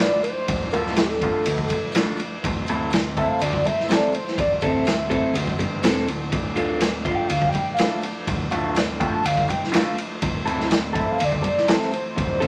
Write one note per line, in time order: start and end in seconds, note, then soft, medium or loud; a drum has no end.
0.00 0.21 A2 medium
0.00 0.22 D3 medium
0.00 2.38 F3 medium
0.00 0.21 A3 medium
0.00 2.39 A3 medium
0.00 2.39 D4 medium
0.00 0.21 F4 medium
0.00 2.38 A4 medium
0.00 0.22 D5 loud
0.00 2.39 D5 medium
0.00 snare loud
0.22 0.69 C5 loud
0.22 muted clean electric guitar stroke soft
0.22 ride medium
0.22 tambourine medium
0.48 0.67 D1 loud
0.48 muted clean electric guitar stroke soft
0.48 kick loud
0.48 ride medium
0.71 1.28 D1 medium
0.71 0.97 A2 medium
0.71 0.97 D3 medium
0.71 0.97 A3 medium
0.71 0.97 F4 loud
0.71 0.83 A#4 medium
0.71 ride medium
0.71 tambourine medium
0.86 snare soft
0.95 1.04 A4 medium
0.95 muted clean electric guitar stroke soft
0.95 snare loud
0.95 ride medium
0.95 tambourine medium
1.02 1.11 G4 medium
1.09 2.18 A4 medium
1.09 snare soft
1.21 1.45 A2 medium
1.21 1.46 D3 medium
1.21 1.46 A3 medium
1.21 1.46 F4 loud
1.21 kick medium
1.21 ride medium
1.44 1.65 D2 medium
1.44 muted clean electric guitar stroke soft
1.44 ride loud
1.44 tambourine medium
1.58 kick medium
1.68 kick medium
1.68 ride medium
1.68 tambourine medium
1.72 muted clean electric guitar stroke soft
1.92 2.19 A2 medium
1.92 2.19 D3 medium
1.92 snare loud
1.92 ride medium
1.92 tambourine medium
1.96 2.20 A3 medium
1.96 2.20 F4 medium
2.17 ride medium
2.17 tambourine medium
2.21 muted clean electric guitar stroke soft
2.42 2.62 D1 loud
2.42 6.29 E3 medium
2.42 12.47 A3 medium
2.42 6.28 C4 medium
2.42 12.47 A4 medium
2.42 6.29 C5 medium
2.42 muted clean electric guitar stroke soft
2.42 kick loud
2.42 ride medium
2.66 3.24 D1 medium
2.66 2.92 C4 medium
2.66 2.92 E4 medium
2.66 2.93 A4 medium
2.66 ride medium
2.66 tambourine medium
2.70 2.92 A3 medium
2.90 muted clean electric guitar stroke soft
2.90 snare loud
2.90 ride medium
2.90 tambourine medium
3.17 3.41 A3 medium
3.17 3.41 C4 medium
3.17 3.41 E4 loud
3.17 3.41 A4 medium
3.17 3.30 E5 loud
3.17 kick medium
3.17 ride medium
3.29 3.43 F5 loud
3.39 3.59 D2 medium
3.39 3.67 D5 loud
3.39 muted clean electric guitar stroke soft
3.39 ride loud
3.39 tambourine medium
3.53 kick medium
3.64 3.92 E5 loud
3.64 muted clean electric guitar stroke medium
3.64 kick medium
3.64 ride medium
3.64 tambourine medium
3.80 snare soft
3.88 4.14 A3 medium
3.88 4.13 C4 medium
3.88 4.13 E4 medium
3.88 4.13 A4 loud
3.88 4.16 D5 loud
3.88 snare loud
3.88 ride medium
3.88 tambourine medium
4.12 4.38 C5 medium
4.12 muted clean electric guitar stroke soft
4.12 ride medium
4.12 tambourine medium
4.27 snare soft
4.38 4.56 D1 loud
4.38 4.51 D5 loud
4.38 muted clean electric guitar stroke soft
4.38 kick loud
4.38 ride medium
4.38 tambourine soft
4.61 5.18 D1 medium
4.61 4.85 A3 medium
4.61 4.86 C4 medium
4.61 4.86 E4 medium
4.61 4.86 A4 loud
4.61 5.56 E5 loud
4.61 kick medium
4.61 ride medium
4.61 tambourine medium
4.85 muted clean electric guitar stroke soft
4.85 snare loud
4.85 ride medium
4.85 tambourine medium
5.09 5.34 A3 medium
5.09 5.35 C4 medium
5.09 5.35 E4 medium
5.09 5.35 A4 loud
5.09 kick medium
5.09 ride medium
5.09 tambourine soft
5.33 5.52 D2 medium
5.33 muted clean electric guitar stroke soft
5.33 ride loud
5.33 tambourine medium
5.47 kick medium
5.59 5.82 G1 medium
5.59 muted clean electric guitar stroke soft
5.59 kick medium
5.59 ride medium
5.59 tambourine medium
5.83 6.06 E1 medium
5.83 6.08 A3 medium
5.83 6.08 C4 medium
5.83 6.07 E4 medium
5.83 6.08 A4 medium
5.83 snare loud
5.83 ride medium
5.83 tambourine loud
5.97 snare soft
6.07 6.30 D1 medium
6.07 muted clean electric guitar stroke soft
6.07 ride medium
6.07 tambourine medium
6.32 6.51 D1 medium
6.32 10.18 F3 medium
6.32 10.19 D4 medium
6.32 8.25 D5 medium
6.32 muted clean electric guitar stroke soft
6.32 kick loud
6.32 ride medium
6.55 7.12 D1 medium
6.55 6.79 A2 medium
6.55 6.80 D3 medium
6.55 6.80 A3 medium
6.55 6.81 F4 medium
6.55 ride medium
6.55 tambourine medium
6.80 muted clean electric guitar stroke soft
6.80 snare loud
6.80 ride medium
6.80 tambourine medium
7.05 7.29 A2 medium
7.05 7.29 D3 medium
7.05 7.30 A3 medium
7.05 7.30 F4 loud
7.05 7.16 F5 medium
7.05 kick medium
7.05 ride medium
7.15 7.29 G5 loud
7.28 7.48 D2 medium
7.28 7.49 F5 loud
7.28 muted clean electric guitar stroke soft
7.28 ride medium
7.28 tambourine medium
7.42 kick medium
7.49 7.74 G5 loud
7.49 tambourine medium
7.54 muted clean electric guitar stroke medium
7.54 kick medium
7.54 ride medium
7.74 7.99 F5 medium
7.74 tambourine medium
7.78 8.04 A2 medium
7.78 8.04 D3 medium
7.78 8.04 A3 medium
7.78 8.03 F4 medium
7.78 snare loud
7.78 ride medium
8.01 muted clean electric guitar stroke soft
8.01 ride medium
8.01 tambourine medium
8.26 8.46 D1 loud
8.26 10.20 C5 medium
8.26 muted clean electric guitar stroke soft
8.26 kick loud
8.26 ride medium
8.51 9.07 D1 medium
8.51 8.75 A2 medium
8.51 8.75 D3 medium
8.51 8.75 A3 loud
8.51 8.76 F4 medium
8.51 ride medium
8.51 tambourine medium
8.75 muted clean electric guitar stroke soft
8.75 snare loud
8.75 ride medium
8.75 tambourine medium
9.00 9.22 A2 medium
9.00 9.23 D3 medium
9.00 9.23 A3 medium
9.00 9.23 F4 medium
9.00 9.14 G5 medium
9.00 kick medium
9.00 ride medium
9.13 9.27 A5 loud
9.24 9.43 D2 medium
9.24 9.50 F5 loud
9.24 muted clean electric guitar stroke soft
9.24 ride loud
9.24 tambourine medium
9.37 kick medium
9.48 9.74 G5 loud
9.48 muted clean electric guitar stroke soft
9.48 kick medium
9.48 ride medium
9.48 tambourine medium
9.64 snare soft
9.72 9.96 A2 medium
9.72 9.96 D3 medium
9.72 9.95 A3 medium
9.72 9.96 F4 medium
9.72 9.97 F5 medium
9.72 snare loud
9.72 ride loud
9.72 tambourine medium
9.97 muted clean electric guitar stroke soft
9.97 ride medium
9.97 tambourine medium
10.22 10.41 D1 loud
10.22 12.47 E3 medium
10.22 12.47 C4 medium
10.22 12.16 C5 medium
10.22 muted clean electric guitar stroke soft
10.22 kick loud
10.22 ride medium
10.46 11.03 D1 medium
10.46 10.69 A3 medium
10.46 10.68 C4 medium
10.46 10.69 E4 medium
10.46 10.69 A4 medium
10.46 ride medium
10.46 tambourine medium
10.60 snare soft
10.70 muted clean electric guitar stroke medium
10.70 snare loud
10.70 ride medium
10.70 tambourine medium
10.93 11.17 A3 medium
10.93 11.18 C4 medium
10.93 11.18 E4 medium
10.93 11.18 A4 loud
10.93 kick medium
10.93 ride medium
11.00 11.13 E5 medium
11.11 11.26 F5 medium
11.18 11.40 D2 medium
11.18 muted clean electric guitar stroke soft
11.18 ride loud
11.18 tambourine medium
11.24 11.75 D5 loud
11.32 kick medium
11.42 muted clean electric guitar stroke medium
11.42 kick medium
11.42 ride medium
11.42 tambourine medium
11.57 snare soft
11.68 11.91 A3 medium
11.68 11.91 C4 medium
11.68 11.91 E4 medium
11.68 11.91 A4 loud
11.68 snare loud
11.68 ride medium
11.68 tambourine medium
11.73 11.95 C5 loud
11.82 snare soft
11.92 12.47 C5 loud
11.92 muted clean electric guitar stroke soft
11.92 ride medium
11.92 tambourine medium
12.16 12.36 D1 loud
12.16 12.47 D5 medium
12.16 muted clean electric guitar stroke soft
12.16 kick loud
12.16 ride medium
12.40 12.47 D1 medium
12.40 12.47 A3 medium
12.40 12.47 C4 medium
12.40 12.47 E4 medium
12.40 12.47 A4 loud
12.40 kick medium
12.40 ride medium
12.40 tambourine medium